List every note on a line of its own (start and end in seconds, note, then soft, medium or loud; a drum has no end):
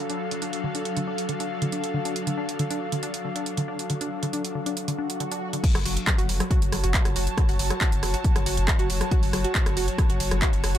0.00 5.63 F#3 medium
0.00 5.64 D4 medium
0.00 5.63 F#4 medium
0.00 6.81 A4 medium
0.00 6.25 F5 medium
0.10 0.19 D4 medium
0.10 closed hi-hat medium
0.31 0.35 D3 medium
0.31 closed hi-hat medium
0.42 0.51 D4 medium
0.42 closed hi-hat medium
0.53 closed hi-hat medium
0.64 0.67 D3 medium
0.75 0.84 D4 medium
0.75 closed hi-hat medium
0.85 closed hi-hat medium
0.97 1.00 D3 medium
0.97 closed hi-hat medium
1.07 1.17 D4 medium
1.18 closed hi-hat medium
1.29 1.33 D3 medium
1.29 closed hi-hat medium
1.40 1.49 D4 medium
1.40 closed hi-hat medium
1.62 1.65 D3 medium
1.62 closed hi-hat medium
1.72 1.82 D4 medium
1.72 closed hi-hat medium
1.84 closed hi-hat medium
1.94 1.98 D3 medium
2.05 2.14 D4 medium
2.05 closed hi-hat medium
2.16 closed hi-hat medium
2.27 2.30 D3 medium
2.27 closed hi-hat medium
2.38 2.47 D4 medium
2.49 closed hi-hat medium
2.59 2.63 D3 medium
2.59 closed hi-hat medium
2.71 2.79 D4 medium
2.71 closed hi-hat medium
2.92 2.96 D3 medium
2.92 closed hi-hat medium
3.03 3.12 D4 medium
3.03 closed hi-hat medium
3.14 closed hi-hat medium
3.25 3.28 D3 medium
3.36 3.45 D4 medium
3.36 closed hi-hat medium
3.46 closed hi-hat medium
3.57 3.61 D3 medium
3.57 closed hi-hat medium
3.68 3.77 D4 medium
3.79 closed hi-hat medium
3.90 3.94 D3 medium
3.90 closed hi-hat medium
4.01 4.10 D4 medium
4.01 closed hi-hat medium
4.23 4.26 D3 medium
4.23 closed hi-hat medium
4.33 4.43 D4 medium
4.33 closed hi-hat medium
4.45 closed hi-hat medium
4.55 4.59 D3 medium
4.66 4.75 D4 medium
4.66 closed hi-hat medium
4.77 closed hi-hat medium
4.77 swell medium
4.88 4.91 D3 medium
4.88 closed hi-hat medium
4.98 5.08 D4 medium
5.10 closed hi-hat medium
5.20 5.24 D3 medium
5.20 closed hi-hat medium
5.31 5.40 D4 medium
5.31 closed hi-hat medium
5.53 5.57 D3 medium
5.53 closed hi-hat medium
5.64 10.78 F#3 medium
5.64 10.78 F#4 medium
5.64 kick loud
5.64 closed hi-hat medium
5.64 crash loud
5.75 5.85 F#1 medium
5.75 5.78 F#3 medium
5.75 cross-stick medium
5.75 open hi-hat medium
5.83 5.96 F#1 loud
5.83 5.95 F#4 medium
5.83 10.78 C#5 medium
5.83 open hi-hat loud
5.97 closed hi-hat medium
6.07 6.11 F#3 medium
6.07 kick loud
6.07 cross-stick medium
6.07 clap loud
6.07 closed hi-hat medium
6.11 10.78 A5 medium
6.18 6.28 F#1 medium
6.18 6.27 F#4 medium
6.18 closed hi-hat medium
6.29 6.40 F#1 loud
6.29 open hi-hat loud
6.40 6.44 F#3 medium
6.40 cross-stick medium
6.40 closed hi-hat medium
6.51 6.60 F#4 medium
6.51 kick loud
6.51 closed hi-hat medium
6.62 6.72 F#1 medium
6.62 closed hi-hat medium
6.72 6.83 F#1 loud
6.72 6.76 F#3 medium
6.72 cross-stick medium
6.72 open hi-hat loud
6.84 6.94 F#1 medium
6.84 6.92 F#4 medium
6.84 closed hi-hat medium
6.94 kick loud
6.94 clap loud
6.94 closed hi-hat medium
7.05 7.15 F#1 medium
7.05 7.09 F#3 medium
7.05 cross-stick medium
7.05 closed hi-hat medium
7.16 7.27 F#1 loud
7.16 7.25 F#4 medium
7.16 open hi-hat loud
7.27 closed hi-hat medium
7.38 7.41 F#3 medium
7.38 kick loud
7.38 cross-stick medium
7.38 closed hi-hat medium
7.49 7.59 F#1 medium
7.49 7.58 F#4 medium
7.49 open hi-hat medium
7.59 7.70 F#1 loud
7.59 open hi-hat loud
7.70 7.74 F#3 medium
7.70 cross-stick medium
7.70 closed hi-hat medium
7.81 7.90 F#4 medium
7.81 kick loud
7.81 clap loud
7.81 closed hi-hat medium
7.92 8.02 F#1 medium
7.92 closed hi-hat medium
8.03 8.14 F#1 loud
8.03 8.07 F#3 medium
8.03 cross-stick medium
8.03 open hi-hat loud
8.14 8.23 F#4 medium
8.14 closed hi-hat medium
8.24 kick loud
8.24 closed hi-hat medium
8.36 8.46 F#1 medium
8.36 8.39 F#3 medium
8.36 cross-stick medium
8.36 closed hi-hat medium
8.46 8.57 F#1 loud
8.46 8.56 F#4 medium
8.46 open hi-hat loud
8.57 8.68 F#1 medium
8.57 closed hi-hat medium
8.68 8.72 F#3 medium
8.68 kick loud
8.68 cross-stick medium
8.68 clap loud
8.68 closed hi-hat medium
8.79 8.89 F#1 medium
8.79 8.88 F#4 medium
8.79 closed hi-hat medium
8.90 9.01 F#1 loud
8.90 open hi-hat loud
9.01 9.04 F#3 medium
9.01 cross-stick medium
9.01 closed hi-hat medium
9.11 9.21 F#4 medium
9.11 kick loud
9.11 closed hi-hat medium
9.23 9.33 F#1 medium
9.23 open hi-hat medium
9.33 9.44 F#1 loud
9.33 9.37 F#3 medium
9.33 cross-stick medium
9.33 open hi-hat loud
9.44 9.53 F#4 medium
9.44 closed hi-hat medium
9.55 kick loud
9.55 clap loud
9.55 closed hi-hat medium
9.66 9.76 F#1 medium
9.66 9.70 F#3 medium
9.66 cross-stick medium
9.66 closed hi-hat medium
9.77 9.88 F#1 loud
9.77 9.86 F#4 medium
9.77 open hi-hat loud
9.88 closed hi-hat medium
9.98 10.02 F#3 medium
9.98 kick loud
9.98 cross-stick medium
9.98 closed hi-hat medium
10.10 10.20 F#1 medium
10.10 10.18 F#4 medium
10.10 closed hi-hat medium
10.20 10.31 F#1 loud
10.20 open hi-hat loud
10.31 10.42 F#1 medium
10.31 10.35 F#3 medium
10.31 cross-stick medium
10.31 closed hi-hat medium
10.42 10.51 F#4 medium
10.42 kick loud
10.42 clap loud
10.42 closed hi-hat medium
10.53 10.63 F#1 medium
10.53 closed hi-hat medium
10.64 10.75 F#1 loud
10.64 10.67 F#3 medium
10.64 cross-stick medium
10.64 open hi-hat loud
10.75 10.78 F#4 medium
10.75 closed hi-hat medium